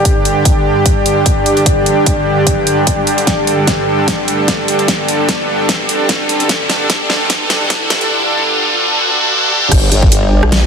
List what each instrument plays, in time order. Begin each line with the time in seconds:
Already playing: supersaw synth G2 D3 D4 G4, analog synth pad G4 D5 G5, riser
0.05 kick, closed hi-hat
0.25 closed hi-hat
0.45 kick, closed hi-hat
0.86 kick, closed hi-hat
1.06 closed hi-hat
1.26 kick, closed hi-hat
1.46 closed hi-hat
1.57 closed hi-hat
1.66 kick, closed hi-hat
1.86 closed hi-hat
2.06 kick, closed hi-hat
2.47 kick, closed hi-hat
2.67 closed hi-hat
2.87 kick, closed hi-hat
3.07 closed hi-hat
3.18 closed hi-hat
3.27 supersaw synth A4, kick, snare, closed hi-hat
3.47 closed hi-hat
3.67 kick, snare, closed hi-hat
4.08 kick, snare, closed hi-hat
4.28 closed hi-hat
4.48 kick, snare, closed hi-hat
4.68 closed hi-hat
4.79 closed hi-hat
4.88 kick, snare, closed hi-hat
5.08 closed hi-hat
5.29 kick, snare, closed hi-hat
5.69 kick, snare, closed hi-hat
5.89 closed hi-hat
6.09 kick, snare, closed hi-hat
6.29 closed hi-hat
6.40 closed hi-hat
6.49 kick, snare, closed hi-hat
6.70 snare, closed hi-hat
6.90 kick, snare, closed hi-hat
7.10 snare
7.30 kick, snare, closed hi-hat
7.50 snare, closed hi-hat
7.70 kick, snare, closed hi-hat
7.90 snare, closed hi-hat
8.01 closed hi-hat
9.71 wobble bass G1, supersaw synth G3 D4 D5 G5, kick, cross-stick, closed hi-hat, crash
9.92 wobble bass G1, closed hi-hat
10.03 kick
10.12 wobble bass G1, closed hi-hat
10.43 wobble bass A#1, cross-stick
10.52 snare, closed hi-hat